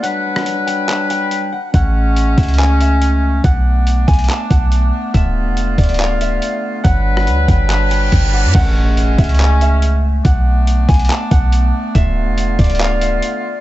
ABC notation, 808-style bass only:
X:1
M:4/4
L:1/16
Q:1/4=141
K:A
V:1 name="808-style bass" clef=bass
z16 | A,,,6 C,,8- C,,2 | B,,,6 B,,,2 z2 B,,,4 z2 | D,,,3 E,,,3 D,,,6 z4 |
=G,,,4 D,,2 G,,,6 G,,,3 =G,, | A,,,6 C,,8- C,,2 | B,,,6 B,,,2 z2 B,,,4 z2 | D,,,3 E,,,3 D,,,6 z4 |]